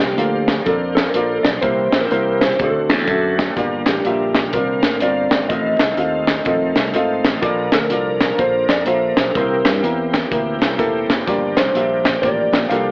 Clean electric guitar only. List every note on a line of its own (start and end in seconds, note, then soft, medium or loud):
0.00 0.65 G4 medium
0.66 0.74 A4 medium
0.95 1.33 A#4 medium
1.33 1.46 A4 medium
1.43 1.48 D5 loud
1.62 2.03 C5 loud
2.00 2.42 A#4 medium
2.40 2.60 C5 medium
2.59 3.34 A4 medium
3.89 4.53 G4 medium
4.54 4.98 A#4 medium
5.02 5.47 D5 medium
5.49 6.42 D#5 medium
7.74 8.36 A#4 medium
8.40 8.68 C5 medium
8.69 8.86 D5 medium
8.87 9.31 C5 medium
9.30 9.35 A4 medium
9.36 10.76 A#4 medium
11.57 12.19 C5 medium
12.22 12.67 D5 medium
12.69 12.91 F5 medium